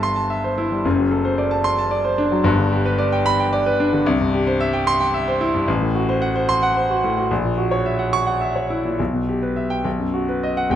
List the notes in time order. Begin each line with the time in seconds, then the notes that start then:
Already playing: G1 G2 G3 A4 C5 E5 A5
0.03 C6
0.16 A5
0.30 E5
0.44 C5
0.58 E4
0.71 G3
0.85 F#1 F#2
0.99 F#3
1.11 A4
1.25 C5
1.38 D5
1.51 A5
1.64 C6
1.79 A5
1.91 D5
2.05 C5
2.18 D4
2.32 F#3
2.43 G1 G2
2.58 D3
2.72 G4
2.85 B4
2.98 D5
3.12 G5
3.26 B5
3.40 G5
3.53 D5
3.66 B4
3.80 D4
3.93 D3
4.06 C2
4.21 G2
4.34 G4
4.47 C5
4.60 E5
4.73 G5
4.87 C6
5.00 G5
5.14 E5
5.28 C5
5.41 E4
5.54 G2
5.68 A1
5.82 A2
5.95 F#4
6.09 C5
6.22 F#5
6.36 C5
6.49 C6
6.63 F#5
6.76 C5
6.91 F#4
7.04 A2
7.18 F#4
7.31 A#1
7.44 A#2
7.58 F#4
7.71 C#5
7.86 E5
7.99 F#5
8.13 C#6
8.27 F#5
8.41 E5
8.56 C#5
8.70 E4
8.85 A#2
8.99 B1
9.14 B2
9.29 G4
9.42 B4
9.56 E5
9.70 G5
9.85 B1
10.00 F#2
10.14 F#4
10.29 B4
10.43 D#5
10.57 F#5
10.70 E1 E2 G5